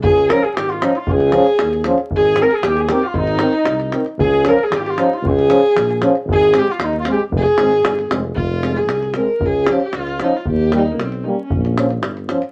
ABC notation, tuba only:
X:1
M:2/4
L:1/8
Q:1/4=115
K:Dblyd
V:1 name="Tuba" clef=bass
D,,2 A,,,2 | D,,2 E,,2 | A,,,2 E,,2 | A,,,2 C,,2 |
D,,2 A,,,2 | D,,2 B,,,2 | A,,,2 E,,2 | F,,, A,,, G,,, F,,, |
F,,,2 C,,2 | D,,2 D,,2 | E,,2 =B,,,2 | B,,,2 G,,,2 |]